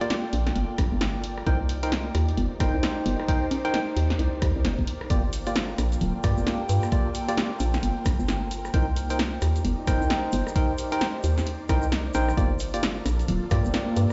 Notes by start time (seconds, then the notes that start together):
Already playing: A#3 F4 A4 A#4 D5 G5
0.01 A#3 F4 G4 D5, closed hi-hat
0.10 snare, closed hi-hat
0.33 A#1, open hi-hat
0.47 snare, closed hi-hat
0.56 G1, closed hi-hat
0.78 A#1, kick, cross-stick, open hi-hat
0.92 G1
1.01 snare, closed hi-hat
1.24 open hi-hat
1.38 cross-stick
1.46 C2 D#4 G4 A#4 C5 G5, kick, closed hi-hat
1.69 open hi-hat
1.83 D#4 A#4 C5 G5, closed hi-hat
1.92 snare, closed hi-hat
2.00 C5
2.15 D#2, cross-stick, open hi-hat
2.29 closed hi-hat
2.37 G1, closed hi-hat
2.60 G1 D#4 A#4 C5 G5, kick, cross-stick, open hi-hat
2.74 C2
2.83 snare, closed hi-hat
3.06 G1, open hi-hat
3.20 cross-stick
3.28 D#4 A#4 C5 G5, kick, closed hi-hat
3.51 open hi-hat, high conga
3.65 D#4 A#4 C5 G5, closed hi-hat
3.74 snare, closed hi-hat
3.97 D#2, open hi-hat
4.10 snare, closed hi-hat
4.19 C2, closed hi-hat
4.42 D#2, kick, cross-stick, open hi-hat
4.56 C2
4.65 G1, snare, closed hi-hat
4.79 G1, kick
4.87 open hi-hat
5.01 cross-stick
5.10 G1 A#3 F4 G4 A4 D5, kick, closed hi-hat, shaker
5.33 A#3, open hi-hat, shaker
5.39 G5
5.46 A#3 F4 G4 D5, closed hi-hat, shaker
5.55 snare, closed hi-hat, shaker
5.78 A#1, cross-stick, open hi-hat, shaker
5.92 closed hi-hat, shaker
6.01 D1, closed hi-hat, shaker
6.23 G2 A#3 F4 G4 D5, kick, cross-stick, open hi-hat, shaker
6.37 G1, shaker
6.47 snare, closed hi-hat, shaker
6.69 G2, open hi-hat, shaker
6.82 cross-stick, shaker
6.92 A#3 F4 G4 C5 D5, kick, closed hi-hat, shaker
7.15 open hi-hat, shaker
7.29 A#3 F4 G4 D5, closed hi-hat, shaker
7.37 snare, closed hi-hat, shaker
7.60 A#1, open hi-hat, shaker
7.74 snare, closed hi-hat, shaker
7.83 G1, closed hi-hat, shaker
8.06 A#1, kick, cross-stick, open hi-hat, shaker
8.19 G1, shaker
8.28 snare, closed hi-hat, shaker
8.51 open hi-hat, shaker
8.65 cross-stick, shaker
8.74 C2 D#4 G4 A#4 C5 D5 G5, kick, closed hi-hat, shaker
8.96 open hi-hat, shaker
9.08 D#4 A#4 C5 G5, closed hi-hat, shaker
9.19 snare, closed hi-hat, shaker
9.42 D#2, cross-stick, open hi-hat, shaker
9.56 closed hi-hat, shaker
9.65 G1, closed hi-hat, shaker
9.87 G1 D#4 A#4 C5 G5, kick, cross-stick, open hi-hat, shaker
10.01 C2, shaker
10.10 snare, closed hi-hat, shaker
10.32 G1, open hi-hat, shaker
10.47 cross-stick, shaker
10.56 D#4 A#4 C5 G5, kick, closed hi-hat, shaker
10.78 open hi-hat, shaker
10.91 D#4 A#4 C5 G5, closed hi-hat, shaker
11.01 snare, closed hi-hat, shaker
11.23 D#2, open hi-hat, shaker
11.38 snare, closed hi-hat, shaker
11.46 closed hi-hat, shaker
11.69 C2 D#4 A#4 C5 G5, kick, cross-stick, open hi-hat, shaker
11.82 shaker
11.92 snare, closed hi-hat, shaker
12.14 A#1 D#4 A#4 C5 G5, open hi-hat, shaker
12.28 cross-stick, shaker
12.37 G1 A#3 F4 G4 A4 A#4 D5, kick, closed hi-hat, shaker
12.59 open hi-hat, shaker
12.74 A#3 F4 G4 D5, closed hi-hat, shaker
12.81 A#3, snare, closed hi-hat, shaker
13.06 A#1, cross-stick, open hi-hat, shaker
13.19 closed hi-hat, shaker
13.28 D1, closed hi-hat, shaker
13.46 G5
13.51 G2 A#3 F4 G4 D5, kick, cross-stick, open hi-hat, shaker
13.65 G1, shaker
13.74 snare, closed hi-hat, shaker
13.96 G2, open hi-hat, shaker